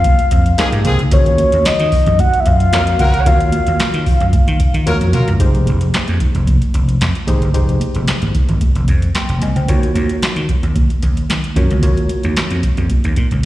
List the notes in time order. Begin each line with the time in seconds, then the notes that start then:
Already playing: F5
0.04 kick, closed hi-hat, high conga
0.19 closed hi-hat, muted conga
0.31 F2, kick, closed hi-hat
0.46 closed hi-hat
0.58 D#3 C4 D#4 G4 G#4 A#4, snare, clap, closed hi-hat, muted conga, high conga
0.72 G#2, closed hi-hat, muted conga
0.85 C2 D#3 C4 G#4, closed hi-hat, high conga, low conga
0.99 C#2, closed hi-hat
1.11 D#2 F4 F#4 A#4 C5 C#5, kick, closed hi-hat
1.19 C#5
1.26 closed hi-hat
1.38 closed hi-hat, high conga
1.52 D#2, closed hi-hat
1.65 D#5, muted slap bass stroke, snare, clap, closed hi-hat, muted conga
1.80 D#3, closed hi-hat, muted conga
1.92 kick, open hi-hat, low conga
2.06 F#2, closed hi-hat, low conga
2.19 F#5, kick, closed hi-hat, muted conga, high conga
2.33 closed hi-hat
2.40 E5
2.46 F#2 F5, kick, closed hi-hat
2.60 closed hi-hat
2.72 F2 F#3 F4 F#4 A#4 C#5, snare, clap, closed hi-hat, high conga
2.87 closed hi-hat
2.99 C#2 F#3 F4 A#4 F#5, kick, closed hi-hat, high conga, low conga
3.14 closed hi-hat
3.26 D#2 F4 F#4 A#4 C#5 F5, kick, closed hi-hat
3.40 closed hi-hat
3.52 closed hi-hat, high conga
3.67 D#2, closed hi-hat
3.80 muted slap bass stroke, snare, clap, closed hi-hat, muted conga
3.94 D#3, closed hi-hat, muted conga
4.06 kick, open hi-hat, low conga
4.20 F#2, closed hi-hat, low conga
4.33 kick, closed hi-hat, high conga
4.47 D#3, closed hi-hat, muted conga
4.60 kick, closed hi-hat
4.74 D#3, closed hi-hat
4.86 D#2 F#3 F4 F#4 A#4 C#5, closed hi-hat, high tom, high conga
5.01 F2, closed hi-hat
5.13 F#3 F4 A#4, closed hi-hat, mid tom, high conga, low conga
5.28 C#2, closed hi-hat, floor tom
5.40 F1 D#4 G4 G#4 C5, kick, closed hi-hat
5.55 closed hi-hat
5.66 F1, closed hi-hat, high conga
5.81 closed hi-hat
5.94 muted slap bass stroke, snare, clap, closed hi-hat, muted conga
6.08 F2, closed hi-hat, muted conga, high conga
6.20 kick, closed hi-hat, low conga
6.35 F1, closed hi-hat, low conga
6.47 kick, closed hi-hat, muted conga, high conga
6.62 closed hi-hat
6.74 F1, kick, closed hi-hat
6.89 closed hi-hat
7.01 F2, snare, clap, closed hi-hat, high conga
7.15 closed hi-hat
7.27 G#1 D#4 G4 G#4 C5, kick, closed hi-hat, high conga, low conga
7.42 G1, closed hi-hat
7.54 F1 D#4 G4 G#4 C5, kick, closed hi-hat
7.68 closed hi-hat, muted conga
7.80 closed hi-hat, high conga
7.95 F1, closed hi-hat
8.08 snare, clap, closed hi-hat
8.22 G#1, closed hi-hat, muted conga, high conga
8.35 kick, closed hi-hat, low conga
8.49 G#1, closed hi-hat, low conga
8.61 kick, closed hi-hat, muted conga, high conga
8.75 F1, closed hi-hat, muted conga
8.88 F2, kick, closed hi-hat
9.02 closed hi-hat
9.15 G5 C6, snare, clap, closed hi-hat, high conga
9.29 F1, closed hi-hat, muted conga
9.42 C2 D#5 G#5, closed hi-hat, high conga, low conga
9.56 C#2 C5 G5, closed hi-hat
9.68 D#2 F4 F#4 A#4 C#5, kick, closed hi-hat
9.83 closed hi-hat
9.95 D#2, closed hi-hat, high conga
10.09 closed hi-hat
10.22 muted slap bass stroke, snare, clap, closed hi-hat
10.36 D#3, closed hi-hat, high conga
10.49 kick, closed hi-hat, low conga
10.63 D#2, closed hi-hat, low conga
10.76 kick, closed hi-hat, muted conga, high conga
10.89 closed hi-hat, muted conga
11.03 D#2, kick, closed hi-hat
11.17 closed hi-hat
11.29 D#3, snare, clap, closed hi-hat, muted conga, high conga
11.44 closed hi-hat
11.56 F#2 F4 F#4 A#4 C#5, kick, closed hi-hat, high conga, low conga
11.70 C#2, closed hi-hat
11.82 D#2 F4 F#4 A#4 C#5, kick, closed hi-hat
11.96 closed hi-hat, muted conga
12.09 closed hi-hat, high conga
12.23 D#2, closed hi-hat
12.37 snare, clap, closed hi-hat, muted conga
12.51 F2, closed hi-hat, high conga
12.63 kick, closed hi-hat, low conga
12.77 F2, closed hi-hat, low conga
12.90 kick, closed hi-hat, high conga
13.04 D#2, closed hi-hat, muted conga
13.16 A#2, kick, closed hi-hat
13.31 C#2, closed hi-hat